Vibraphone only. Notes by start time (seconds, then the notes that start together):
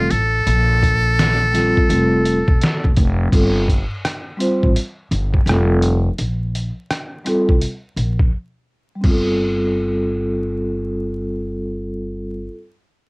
1.52 G3 C4 F4 A4
1.87 G3 C4 F4 A4
3.30 G3 C4 F4
3.34 A4
4.37 G3 C4 F4 C5
5.45 G3 C4 F4
5.50 A4
7.24 G3 C4 F4
7.28 A4
8.95 G3
9.01 C4
9.06 F4
9.11 A4